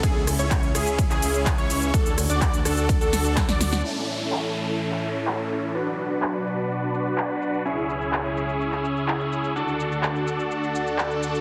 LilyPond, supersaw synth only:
\new Staff \with { instrumentName = "Supersaw synth" } { \time 4/4 \key a \major \tempo 4 = 126 <e' gis'>8 r16 <cis' e' cis''>8 r16 <cis' e' gis'>8 r16 <cis' e' gis'>4 <cis' e' cis''>8. | <d' a'>8 r16 <d' fis' d''>8 r16 <d' fis' a'>8 r16 <d' fis' a'>4 <d' fis' d''>8. | <cis' e' a'>1 | <d' fis' b'>1 |
<cis' e' gis'>1 | <d' fis' a'>1 | }